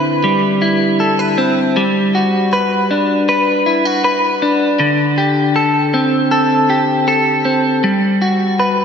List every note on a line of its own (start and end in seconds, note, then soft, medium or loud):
0.00 2.22 D3 medium
0.00 1.37 C4 soft
0.00 0.61 E4 medium
0.00 1.00 B4 medium
0.24 1.76 G3 medium
0.62 1.83 E4 medium
1.00 1.19 A4 soft
1.19 1.84 B4 soft
1.38 1.83 C4 soft
1.77 5.27 G3 medium
2.15 3.66 F#4 medium
2.53 3.28 B4 medium
2.91 4.42 D4 medium
3.29 4.03 B4 medium
3.66 3.85 E4 medium
3.85 4.88 F#4 medium
4.04 4.88 B4 medium
4.42 5.93 D4 medium
4.79 7.83 D3 medium
5.18 6.69 G4 medium
5.56 6.30 A4 medium
5.94 7.44 C4 medium
6.31 7.07 A4 medium
6.70 8.21 G4 medium
7.08 7.91 A4 medium
7.45 7.91 C4 medium
7.84 8.85 G3 medium
8.22 8.85 F#4 medium
8.60 8.85 B4 medium